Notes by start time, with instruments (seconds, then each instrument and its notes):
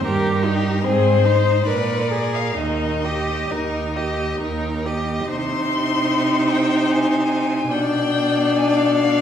0.05 cello G2, viola G4, violin A#4
0.43 viola D#4, violin G4 A#4
0.84 cello G#2, viola C4, violin G#4 C5
1.25 viola D#4, violin C5
1.66 cello A#2, viola A#4, violin B4 D5
2.10 viola G#4, violin A#4
2.35 violin F5
2.57 cello D#2, viola D#4, violin A#4 D#5
3.05 viola G4, violin D#5
3.51 cello D#2, viola D#4, violin A#4
3.96 viola G4, violin D#5
4.40 cello D#2, viola D#4, violin A#4
4.86 viola G4, violin D#5
5.29 cello C3, viola D#4, violin C5 C6
6.50 violin G5
6.91 violin G#5
7.71 cello B2, viola D4, violin D5 G5
8.58 violin G#5
8.67 violin G5
8.77 violin F5
8.86 violin G5
8.96 violin F5